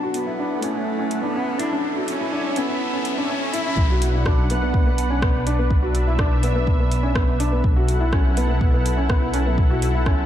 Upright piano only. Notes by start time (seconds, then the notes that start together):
0.03 F#4
0.27 E4
0.39 D4
0.63 C#4
0.75 C#4
0.99 C#4
1.23 D4
1.35 C#4
1.59 E4
1.72 C#4
1.96 F#4
2.20 E4
2.32 D4
2.57 C#4
2.69 C#4
2.93 C#4
3.18 D4
3.30 C#4
3.54 E4
3.66 C#4
3.90 F#4
4.15 E4
4.27 D4
4.51 B3
4.62 B3
4.87 B3
5.10 C#4
5.22 B3
5.47 D4
5.59 B3
5.83 F#4
6.08 E4
6.19 D4
6.44 B3
6.56 B3
6.80 B3
7.03 C#4
7.15 B3
7.40 D4
7.52 B3
7.77 F#4
8.01 E4
8.13 C#4
8.37 B3
8.49 B3
8.74 B3
8.97 C#4
9.10 B3
9.34 C#4
9.46 B3
9.71 F#4
9.95 E4
10.06 C#4